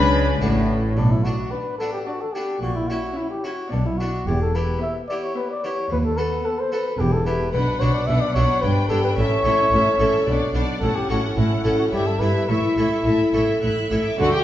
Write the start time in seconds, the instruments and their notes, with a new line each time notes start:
Already playing: double bass section C#2, harpsichord C#3 B3 D4 F#4, cello section C#3, viola section D4, trumpet B4, violin section B4 B5
0.41 double bass section A1, harpsichord A2 B3 D4 F#4, cello section A2
0.96 double bass section B1, harpsichord B2, cello section B2, trumpet D4
1.11 trumpet E4
1.24 harpsichord B3 D4 F#4, trumpet F#4
1.52 viola section D4, trumpet B4, violin section D5 F#5
1.78 harpsichord B3 D4 F#4, trumpet A4
1.93 trumpet G4
2.05 viola section D4, trumpet F#4, violin section D5 F#5
2.21 trumpet A4
2.33 harpsichord B3 D4 F#4, trumpet G4
2.62 double bass section A#1, cello section A#2, harpsichord A#2, trumpet F#4
2.75 trumpet E4
2.89 harpsichord C#4 E4 F#4, trumpet F#4
3.16 viola section C#4, trumpet E4, violin section E5 F#5
3.31 trumpet G4
3.44 harpsichord C#4 E4 F#4, trumpet F#4
3.71 double bass section B1, harpsichord B2, cello section B2, viola section B3, trumpet D4, violin section D5 F#5
3.86 trumpet E4
3.98 harpsichord B3 D4 F#4, trumpet F#4
4.27 double bass section E1, cello section E2, harpsichord E2, trumpet G4
4.42 trumpet A4
4.55 harpsichord B3 E4 G4, trumpet B4
4.81 viola section B3, violin section E5 G5, trumpet E5
5.08 harpsichord B3 E4 G4, trumpet D5
5.23 trumpet C#5
5.35 viola section B3, trumpet B4, violin section E5 G5
5.51 trumpet D5
5.64 harpsichord B3 E4 G4, trumpet C#5
5.90 harpsichord D#2, cello section D#2, double bass section D#2, trumpet B4
6.06 trumpet A4
6.18 harpsichord B3 F#4 A4, trumpet B4
6.44 viola section B3, trumpet A4, violin section F#5 A5
6.59 trumpet C5
6.72 harpsichord B3 F#4 A4, trumpet B4
6.99 double bass section E1, cello section E2, harpsichord E2, viola section B3, trumpet G4, violin section G5 B5
7.13 trumpet A4
7.26 harpsichord B3 E4 G4, trumpet B4
7.53 double bass section B1, cello section B2, harpsichord B2, viola section D4, trumpet B4, violin section F#5 B5
7.80 double bass section B1, cello section B2, harpsichord B2 B3 D4 F#4, viola section D4, trumpet C#5, violin section F#5 B5
7.94 trumpet D5
8.07 double bass section B1, cello section B2, harpsichord B2, viola section D4, trumpet E5, violin section F#5 B5
8.21 trumpet D5
8.34 double bass section B1, harpsichord B2 B3 D4 F#4, cello section B2, viola section D4, trumpet C#5, violin section F#5 B5
8.61 double bass section G1, harpsichord G2, cello section G2, viola section D4, trumpet B4, violin section G5 B5
8.88 double bass section G1, harpsichord G2 B3 D4 G4, cello section G2, viola section D4, trumpet A4, violin section G5 B5
9.04 trumpet B4
9.16 double bass section A1, harpsichord A2, cello section A2, viola section C#4, trumpet C#5, violin section E5 A5
9.44 double bass section A1, harpsichord A2 A3 C#4 E4, cello section A2, viola section C#4, violin section E5 A5
9.71 double bass section A1, cello section A2, harpsichord A2, viola section C#4, violin section E5 A5
9.98 double bass section A1, cello section A2, harpsichord A2 A3 C#4 E4, viola section C#4, violin section E5 A5
10.26 double bass section B1, cello section B2, harpsichord B2, viola section D4, violin section D5 F#5
10.53 double bass section B1, cello section B2, harpsichord B2 B3 D4, viola section D4, violin section D5 F#5
10.81 double bass section A1, cello section A2, harpsichord A2, viola section C#4, trumpet A4, violin section F#5 A5
10.96 trumpet G4
11.09 double bass section A1, cello section A2, harpsichord A2 A3 C#4 F#4, viola section C#4, trumpet F#4, violin section F#5 A5
11.36 double bass section A1, cello section A2, harpsichord A2, viola section C#4, trumpet E4, violin section F#5 A5
11.63 double bass section A1, harpsichord A2 A3 C#4 F#4, cello section A2, viola section C#4, violin section F#5 A5
11.79 trumpet F#4
11.92 double bass section G1, cello section G2, harpsichord G2, viola section E4, trumpet G4, violin section E5 B5
12.07 trumpet A4
12.20 double bass section G1, cello section G2, harpsichord G2 B3 E4, viola section E4, trumpet B4, violin section E5 B5
12.48 double bass section A1, cello section A2, harpsichord A2, viola section E4, trumpet E4, violin section E5 C#6
12.77 double bass section A1, harpsichord A2 A3 C#4 E4, cello section A2, viola section E4, violin section E5 C#6
13.05 double bass section A1, harpsichord A2, cello section A2, viola section E4, violin section E5 A5
13.20 violin section B5
13.33 double bass section A1, harpsichord A2 A3 C#4 E4, cello section A2, viola section E4, violin section E5 C#6
13.60 double bass section A1, harpsichord A2, cello section A2, viola section E4, violin section E5 F#6
13.90 double bass section A1, cello section A2, harpsichord A2 A3 C#4 E4, viola section E4, violin section E5 E6
14.05 violin section D6
14.18 double bass section D2, harpsichord D3, cello section D3, violin section F#4 F#5, trumpet F#4, viola section A4
14.33 viola section F#4, violin section G4 G5, trumpet G4